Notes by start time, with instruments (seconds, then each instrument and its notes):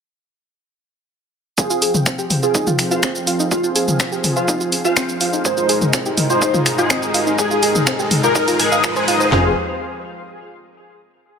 1.58 analog synth bass F1, analog synth pad F3 C4 G5, analog polysynth F4 C5 F5, analog synth lead G#4, kick, riser, shaker
1.70 synth arpeggio sound F4, shaker
1.82 synth arpeggio sound G#4, open hi-hat, shaker
1.94 mid tom, shaker
2.06 synth arpeggio sound C4, finger snap, kick, shaker
2.19 synth arpeggio sound G4, shaker
2.30 open hi-hat, mid tom, shaker
2.43 synth arpeggio sound F4, analog polysynth F4 C5 F5, analog synth lead G#4, shaker
2.55 synth arpeggio sound D#4, kick, shaker
2.67 synth arpeggio sound F4, mid tom, shaker
2.79 finger snap, open hi-hat, shaker
2.91 analog polysynth F4 C5 F5, synth arpeggio sound F4, shaker
3.03 synth arpeggio sound C4, finger snap, kick, shaker
3.15 shaker
3.27 synth arpeggio sound F4, open hi-hat, shaker
3.40 synth arpeggio sound D#4, shaker
3.51 analog polysynth F4 C5 F5, analog synth lead F4, analog synth pad G#4, kick, shaker
3.64 synth arpeggio sound F4, shaker
3.75 synth arpeggio sound G#4, open hi-hat, shaker
3.88 mid tom, shaker
4.00 synth arpeggio sound C4, finger snap, kick, shaker
4.12 synth arpeggio sound G4, shaker
4.24 open hi-hat, mid tom, shaker
4.36 analog polysynth F4 C5 F5, synth arpeggio sound F4, analog synth lead F4, shaker
4.48 synth arpeggio sound D#4, kick, shaker
4.61 synth arpeggio sound F4, shaker
4.72 open hi-hat, shaker
4.85 analog polysynth F4 C5 F5, synth arpeggio sound F4, shaker
4.96 synth arpeggio sound C4, finger snap, kick, shaker
5.09 shaker
5.21 synth arpeggio sound F4, open hi-hat, shaker
5.33 synth arpeggio sound D#4, shaker
5.45 analog synth bass G#1, analog polysynth G#3 D#4 G#4, analog synth pad G#3 D#4 A#4, analog synth lead C5, kick, shaker
5.57 synth arpeggio sound F4, shaker
5.69 synth arpeggio sound G#4, open hi-hat, shaker
5.82 mid tom, shaker
5.93 synth arpeggio sound C4, finger snap, kick, shaker
6.06 synth arpeggio sound G4, shaker
6.17 open hi-hat, mid tom, shaker
6.30 analog polysynth G#3 D#4 G#4, synth arpeggio sound F4, analog synth lead C5, shaker
6.42 synth arpeggio sound D#4, kick, shaker
6.54 synth arpeggio sound F4, mid tom, shaker
6.66 finger snap, open hi-hat, shaker
6.78 analog polysynth G#3 D#4 G#4, synth arpeggio sound F4, shaker
6.90 synth arpeggio sound C4, finger snap, kick, shaker
7.03 shaker
7.14 synth arpeggio sound F4, open hi-hat, shaker
7.27 synth arpeggio sound D#4, shaker
7.38 analog polysynth G#3 D#4 G#4, analog synth lead G#4, kick, shaker
7.51 synth arpeggio sound F4, shaker
7.63 synth arpeggio sound G#4, open hi-hat, shaker
7.75 mid tom, shaker
7.87 synth arpeggio sound C4, finger snap, kick, shaker
7.99 synth arpeggio sound G4, shaker
8.11 open hi-hat, mid tom, shaker
8.23 analog polysynth G#3 D#4 G#4, synth arpeggio sound F4, analog synth lead A#4, shaker
8.35 synth arpeggio sound D#4, kick, shaker
8.48 synth arpeggio sound F4, open hi-hat, shaker
8.59 analog polysynth G#3 D#4 G#4, open hi-hat, shaker
8.72 synth arpeggio sound F5, shaker
8.84 synth arpeggio sound F4, finger snap, kick, shaker
8.96 analog polysynth G#3 D#4 G#4, synth arpeggio sound C5, shaker
9.08 synth arpeggio sound F4, open hi-hat, shaker
9.20 synth arpeggio sound C5, shaker
9.32 analog synth bass F1, analog synth pad F3 C4 G4, synth arpeggio sound F4, analog polysynth F4 C5 F5, analog synth lead G#4, snare, clap, floor tom